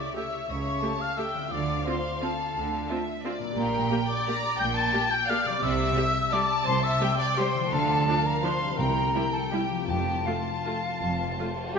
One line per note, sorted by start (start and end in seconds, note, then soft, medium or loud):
0.00 1.45 C#3 medium
0.00 3.21 A3 soft
0.00 1.49 E4 soft
0.00 1.52 G4 soft
0.00 0.16 D5 medium
0.00 0.16 E5 medium
0.00 0.15 D6 medium
0.14 0.23 A3 soft
0.14 0.23 G4 soft
0.14 0.49 C#5 medium
0.14 0.48 E5 medium
0.14 0.49 E6 medium
0.48 0.77 C#2 medium
0.48 0.77 C#3 medium
0.48 1.01 C#5 medium
0.48 0.82 E5 medium
0.48 1.03 C#6 medium
0.82 0.90 A3 soft
0.82 0.90 G4 soft
0.82 1.18 A5 medium
0.99 1.18 F5 medium
0.99 1.19 F6 medium
1.17 1.25 A3 soft
1.17 1.25 G4 soft
1.17 1.52 E5 medium
1.17 1.52 G5 medium
1.17 1.53 E6 medium
1.34 3.49 D3 medium
1.38 3.51 C4 soft
1.43 3.46 D4 soft
1.48 1.80 D2 medium
1.48 3.56 F4 soft
1.48 1.86 D5 medium
1.48 2.89 F5 medium
1.48 1.87 D6 medium
1.52 1.81 D3 medium
1.85 1.95 C4 soft
1.85 1.95 F4 soft
1.85 2.22 C5 medium
1.85 2.22 C6 medium
2.21 2.30 C4 soft
2.21 2.30 F4 soft
2.21 3.07 A4 medium
2.21 3.05 A5 medium
2.55 2.84 D2 medium
2.55 2.84 D3 medium
2.89 2.98 C4 medium
2.89 2.97 F4 soft
2.89 3.24 E5 medium
3.23 3.32 C4 soft
3.23 3.33 F4 soft
3.23 3.56 D5 medium
3.38 5.55 A#2 medium
3.43 5.58 A#3 medium
3.47 5.60 D4 medium
3.52 3.84 A#1 medium
3.52 5.57 G4 medium
3.56 3.85 A#2 medium
3.56 4.04 A#4 medium
3.56 4.25 G5 medium
3.56 4.05 A#5 medium
3.91 3.99 A#3 medium
3.91 3.99 G4 soft
4.07 4.59 D5 medium
4.07 4.58 D6 medium
4.25 4.34 A#3 medium
4.25 4.35 G4 medium
4.25 4.58 A#5 medium
4.58 4.87 A#1 medium
4.58 4.87 A#2 medium
4.58 4.75 G5 medium
4.58 5.29 G5 medium
4.58 4.65 G6 loud
4.75 5.11 A5 medium
4.75 5.12 A6 medium
4.93 5.01 A#3 medium
4.93 5.01 G4 medium
5.10 5.29 G5 medium
5.10 5.31 G6 medium
5.28 5.37 A#3 medium
5.28 5.38 G4 medium
5.28 5.97 D5 medium
5.28 5.46 F5 medium
5.28 5.49 F6 medium
5.45 7.64 C3 medium
5.45 5.63 D5 medium
5.45 5.65 D6 medium
5.49 7.66 G3 medium
5.54 7.69 C4 medium
5.58 7.71 G4 medium
5.62 5.91 C2 medium
5.62 5.91 C3 medium
5.62 6.32 E5 medium
5.62 6.34 E6 loud
5.97 6.05 G3 medium
5.97 6.05 G4 medium
5.97 6.33 E5 medium
6.31 6.40 G3 medium
6.31 6.40 G4 medium
6.31 6.66 D5 medium
6.31 7.00 A5 loud
6.31 6.66 D6 medium
6.66 6.95 C2 medium
6.66 6.95 C3 medium
6.66 6.83 C5 medium
6.66 6.85 C6 loud
6.82 7.18 E5 medium
6.82 7.18 E6 medium
6.99 7.09 G3 medium
6.99 7.08 G4 medium
6.99 7.71 G5 medium
7.19 7.37 D5 medium
7.19 7.39 D6 loud
7.37 7.46 G3 medium
7.37 7.46 G4 medium
7.37 7.72 C5 medium
7.37 7.75 C6 medium
7.54 8.71 D3 medium
7.59 8.73 F3 medium
7.63 8.75 A3 medium
7.68 8.01 D2 medium
7.68 8.01 D3 medium
7.68 8.78 D4 medium
7.68 8.25 A4 medium
7.68 8.06 F5 medium
7.73 8.28 A5 loud
8.07 8.15 F3 medium
8.07 8.15 D4 medium
8.07 8.77 F5 medium
8.24 8.43 A#4 medium
8.24 8.46 A#5 medium
8.42 8.51 F3 medium
8.42 8.52 D4 medium
8.42 8.78 C5 medium
8.42 8.78 C6 medium
8.61 9.81 C3 medium
8.65 9.83 G3 medium
8.69 9.78 C4 medium
8.74 9.87 E4 soft
8.74 9.32 A#4 medium
8.78 9.08 C2 medium
8.78 9.08 C3 medium
8.78 9.29 C3 medium
8.78 9.12 G5 medium
8.78 9.32 A#5 medium
9.14 9.23 G3 medium
9.14 9.23 E4 medium
9.14 9.87 G5 medium
9.32 9.51 A4 medium
9.32 9.39 A5 medium
9.51 9.60 G3 soft
9.51 9.60 E4 medium
9.51 9.87 G4 medium
9.51 9.87 G5 medium
9.70 11.79 F3 medium
9.75 11.79 A3 soft
9.80 11.79 C4 soft
9.84 10.19 F1 medium
9.84 10.42 F2 medium
9.84 11.79 F4 soft
9.84 10.28 G5 medium
9.88 10.19 F2 medium
9.88 10.25 G4 medium
9.88 11.76 A5 medium
10.26 10.35 A3 soft
10.26 11.76 F4 medium
10.26 10.35 F4 soft
10.26 11.76 F5 medium
10.66 10.74 A3 soft
10.66 10.74 F4 soft
11.01 11.31 F1 medium
11.01 11.32 F2 medium
11.39 11.47 A3 soft
11.39 11.47 F4 soft
11.75 11.79 G4 medium
11.75 11.79 G5 medium